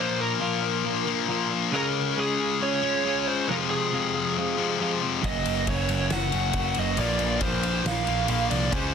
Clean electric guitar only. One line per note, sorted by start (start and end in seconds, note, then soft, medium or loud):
0.00 0.38 A#2 medium
0.00 0.40 F3 medium
0.00 0.40 A#3 medium
0.00 0.40 D4 loud
0.00 0.41 F4 loud
0.39 0.84 A#2 medium
0.39 0.83 F3 medium
0.39 0.63 A#3 medium
0.39 0.61 D4 medium
0.39 0.61 F4 loud
0.62 0.84 A#3 medium
0.62 0.84 D4 medium
0.62 0.86 F4 medium
0.84 1.27 F3 medium
0.84 1.27 A#3 medium
0.84 1.28 D4 medium
0.84 1.30 F4 medium
1.28 1.72 F3 medium
1.28 1.51 A#3 medium
1.28 1.50 D4 medium
1.28 1.49 F4 medium
1.50 1.72 A#3 medium
1.50 1.72 D4 medium
1.50 1.73 F4 medium
1.71 2.15 C#3 medium
1.71 2.16 G#3 medium
1.71 2.17 C#4 loud
1.71 2.18 F4 loud
1.71 2.19 G#4 loud
2.17 2.61 C#3 medium
2.17 2.59 G#3 medium
2.17 2.40 C#4 medium
2.17 2.39 F4 medium
2.17 2.39 G#4 medium
2.39 2.60 C#4 medium
2.39 2.60 F4 medium
2.39 2.61 G#4 medium
2.60 3.03 G#3 medium
2.60 3.04 C#4 medium
2.60 3.05 F4 medium
2.60 3.06 G#4 medium
3.04 3.47 G#3 medium
3.04 3.28 C#4 medium
3.04 3.27 F4 medium
3.04 3.26 G#4 medium
3.27 3.48 C#4 soft
3.27 3.48 F4 medium
3.27 3.47 G#4 medium
3.49 3.91 F2 loud
3.49 3.91 C3 loud
3.49 3.92 F3 medium
3.49 3.92 G#3 loud
3.49 3.92 C4 loud
3.49 3.93 F4 loud
3.92 4.36 F2 medium
3.92 4.36 C3 medium
3.92 4.15 F3 medium
3.92 4.15 G#3 medium
3.92 4.14 C4 medium
3.92 4.13 F4 medium
4.14 4.35 F3 soft
4.14 4.36 G#3 medium
4.14 4.36 C4 medium
4.14 4.37 F4 medium
4.36 4.79 F3 medium
4.36 4.79 G#3 medium
4.36 4.80 C4 medium
4.36 4.81 F4 medium
4.80 5.03 F3 medium
4.80 5.02 G#3 medium
4.80 5.01 C4 medium
4.80 5.01 F4 medium
5.02 5.23 F3 medium
5.02 5.23 G#3 medium
5.02 5.22 C4 medium
5.02 5.22 F4 medium
5.22 5.65 F#2 loud
5.22 5.66 C#3 medium
5.22 5.66 F#3 loud
5.22 5.67 A#3 loud
5.22 5.67 C#4 loud
5.22 5.67 F#4 loud
5.66 6.10 F#2 medium
5.66 6.11 C#3 medium
5.66 5.89 F#3 medium
5.66 5.90 A#3 medium
5.66 5.87 C#4 medium
5.66 5.87 F#4 medium
5.88 6.08 F#3 medium
5.88 6.10 A#3 medium
5.88 6.10 C#4 medium
5.88 6.11 F#4 medium
6.10 6.52 F#3 medium
6.10 6.53 A#3 medium
6.10 6.53 C#4 medium
6.10 6.54 F#4 medium
6.53 6.76 F#3 medium
6.53 6.75 A#3 medium
6.53 6.74 C#4 medium
6.53 6.73 F#4 medium
6.75 6.97 F#3 medium
6.75 6.97 A#3 medium
6.75 6.96 C#4 medium
6.75 6.96 F#4 medium
6.96 7.40 A#2 medium
6.96 7.42 F3 loud
6.96 7.41 A#3 medium
6.96 7.42 D4 loud
6.96 7.43 F4 loud
7.41 7.85 A#2 medium
7.41 7.84 F3 medium
7.41 7.63 A#3 medium
7.41 7.62 D4 medium
7.41 7.62 F4 medium
7.62 7.84 A#3 medium
7.62 7.85 D4 medium
7.62 7.86 F4 medium
7.84 8.27 F3 medium
7.84 8.28 A#3 medium
7.84 8.28 D4 medium
7.84 8.29 F4 medium
8.27 8.71 F3 medium
8.27 8.50 A#3 medium
8.27 8.50 D4 medium
8.27 8.49 F4 medium
8.49 8.72 A#3 medium
8.49 8.71 D4 medium
8.49 8.73 F4 medium
8.71 8.94 C#3 medium
8.71 8.94 G#3 loud
8.71 8.94 C#4 loud
8.71 8.94 F4 loud
8.71 8.94 G#4 loud